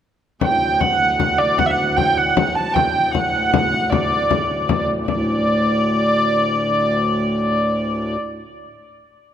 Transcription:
0.41 5.07 D2 medium
0.41 5.07 A2 medium
0.41 0.81 G5 medium
0.41 frame drum medium
0.81 1.19 F#5 medium
0.81 frame drum medium
1.19 1.38 F#5 medium
1.19 frame drum medium
1.38 1.58 D5 medium
1.38 frame drum soft
1.58 1.66 F#5 medium
1.58 frame drum medium
1.66 1.73 E5 medium
1.71 1.97 F#5 medium
1.96 2.17 G5 medium
1.96 frame drum medium
2.17 2.37 F#5 medium
2.37 2.55 F#5 medium
2.37 frame drum medium
2.55 2.74 A5 medium
2.55 frame drum soft
2.74 3.14 G5 medium
2.74 frame drum medium
3.12 3.51 F#5 medium
3.12 frame drum medium
3.51 3.90 F#5 medium
3.51 frame drum medium
3.73 frame drum soft
3.90 4.84 D5 medium
3.90 frame drum medium
4.31 frame drum medium
4.50 frame drum soft
4.69 frame drum medium
4.89 frame drum soft
5.07 8.17 D2 medium
5.07 8.17 A2 medium
5.07 8.12 D5 medium
5.07 frame drum medium

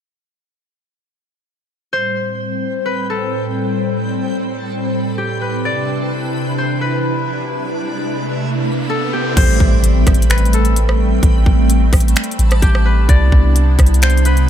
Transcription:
1.93 5.61 A2 medium
1.93 5.61 G3 medium
1.93 5.61 C4 medium
1.93 9.33 C4 medium
1.93 5.61 A4 medium
1.93 5.61 C5 medium
1.93 2.92 C5 loud
1.93 5.61 G5 medium
1.93 9.33 B5 medium
2.86 4.90 B4 medium
3.10 5.29 A4 medium
5.18 7.53 G4 medium
5.41 6.64 B4 medium
5.65 9.33 C3 medium
5.65 9.33 D4 medium
5.65 9.33 E4 medium
5.65 9.33 B4 medium
5.65 9.33 D5 medium
5.65 7.50 D5 medium
5.65 9.33 E5 medium
5.65 riser medium
6.58 6.87 C5 medium
6.81 8.86 B4 medium
8.90 10.53 A4 medium
9.13 11.49 G4 medium
9.37 9.59 A1 loud
9.37 13.05 G3 medium
9.37 13.05 A3 medium
9.37 13.05 C4 medium
9.37 10.36 C5 loud
9.37 11.21 G5 medium
9.37 14.49 B5 medium
9.37 kick loud
9.37 closed hi-hat medium
9.37 crash medium
9.37 impact medium
9.60 10.05 A1 loud
9.60 kick medium
9.84 closed hi-hat medium
10.07 11.19 A1 loud
10.07 kick loud
10.07 cross-stick medium
10.07 closed hi-hat medium
10.14 closed hi-hat medium
10.22 closed hi-hat medium
10.30 12.35 B4 medium
10.30 finger snap loud
10.30 closed hi-hat medium
10.38 closed hi-hat medium
10.45 closed hi-hat soft
10.53 12.73 A4 medium
10.53 closed hi-hat medium
10.65 closed hi-hat soft
10.76 closed hi-hat medium
10.89 cross-stick medium
11.23 11.45 A1 loud
11.23 13.07 A5 medium
11.23 kick loud
11.23 closed hi-hat medium
11.46 11.91 A1 loud
11.46 kick medium
11.70 closed hi-hat medium
11.93 12.15 A1 loud
11.93 kick loud
11.93 cross-stick medium
11.93 closed hi-hat medium
11.93 open hi-hat medium
12.00 closed hi-hat medium
12.08 closed hi-hat medium
12.16 finger snap loud
12.16 closed hi-hat medium
12.24 closed hi-hat medium
12.31 closed hi-hat soft
12.39 12.61 A1 loud
12.39 closed hi-hat medium
12.51 cross-stick loud
12.51 closed hi-hat soft
12.62 13.07 A1 loud
12.62 14.49 G4 medium
12.62 kick loud
12.62 closed hi-hat medium
12.75 cross-stick medium
12.85 14.09 B4 medium
13.09 13.31 C2 loud
13.09 14.49 C3 medium
13.09 14.49 B3 medium
13.09 14.49 D4 medium
13.09 14.49 E4 medium
13.09 14.49 D5 loud
13.09 14.49 E5 medium
13.09 kick loud
13.09 closed hi-hat medium
13.32 13.77 C2 loud
13.32 kick medium
13.56 closed hi-hat medium
13.79 14.49 C2 loud
13.79 kick loud
13.79 cross-stick medium
13.79 closed hi-hat medium
13.86 closed hi-hat medium
13.94 closed hi-hat medium
14.02 14.31 C5 medium
14.02 finger snap loud
14.02 closed hi-hat medium
14.10 closed hi-hat medium
14.17 closed hi-hat soft
14.25 14.49 B4 medium
14.25 closed hi-hat medium
14.37 closed hi-hat soft

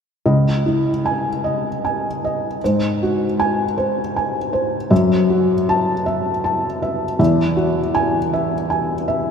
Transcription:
0.26 2.57 C#2 soft
0.26 0.89 D#5 soft
0.66 1.28 E4 soft
1.05 1.67 G#5 medium
1.44 2.06 D#5 soft
1.85 2.46 G#5 soft
2.25 2.62 D#5 soft
2.64 4.89 G#2 medium
2.64 3.24 C5 soft
3.03 3.63 F#4 soft
3.40 4.00 G#5 medium
3.78 4.38 C5 soft
4.16 4.76 G#5 soft
4.53 4.91 C5 soft
4.90 7.16 F#2 medium
4.90 5.53 E5 soft
5.30 5.91 F#4 soft
5.69 6.29 A5 medium
6.06 6.66 E5 soft
6.44 7.05 A5 soft
6.82 7.18 E5 soft
7.19 9.31 E2 medium
7.19 7.79 E5 medium
7.57 8.16 F#4 medium
7.95 8.54 G#5 medium
8.33 8.93 E5 soft
8.70 9.31 G#5 medium
9.08 9.31 E5 soft

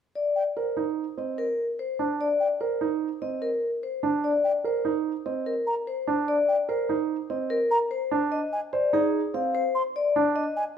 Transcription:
0.15 0.42 D5 medium
0.36 0.43 G5 soft
0.57 0.83 A#4 soft
0.57 0.83 C5 soft
0.77 1.03 D#4 medium
1.18 1.44 C4 soft
1.18 1.44 D#5 soft
1.38 1.65 A#4 medium
1.79 2.06 C5 medium
1.99 2.26 D4 medium
2.21 2.47 D5 medium
2.40 2.48 G5 soft
2.61 2.87 A#4 soft
2.61 2.87 C5 soft
2.81 3.07 D#4 medium
3.22 3.48 C4 soft
3.22 3.48 D#5 medium
3.42 3.69 A#4 medium
3.83 4.10 C5 soft
4.03 4.30 D4 medium
4.24 4.50 D5 medium
4.44 4.52 G5 medium
4.64 4.91 A#4 soft
4.64 4.91 C5 medium
4.85 5.11 D#4 medium
5.26 5.52 C4 soft
5.26 5.52 D#5 medium
5.46 5.73 A#4 medium
5.67 5.74 A#5 medium
5.87 6.14 C5 medium
6.07 6.34 D4 medium
6.28 6.55 D5 medium
6.48 6.56 G5 medium
6.69 6.95 A#4 medium
6.69 6.95 C5 medium
6.89 7.16 D#4 medium
7.30 7.56 C4 medium
7.30 7.56 D#5 medium
7.50 7.77 A#4 medium
7.71 7.79 A#5 medium
7.91 8.18 C5 medium
8.11 8.38 D4 medium
8.32 8.58 D#5 medium
8.53 8.60 G#5 medium
8.73 8.99 C5 medium
8.73 8.99 D5 medium
8.93 9.20 D#4 medium
8.93 9.20 G#4 medium
9.34 9.61 C4 medium
9.34 9.61 F5 medium
9.55 9.81 C5 medium
9.75 9.83 C6 medium
9.96 10.22 D5 medium
10.16 10.42 D4 medium
10.36 10.62 D#5 medium
10.56 10.64 G#5 medium

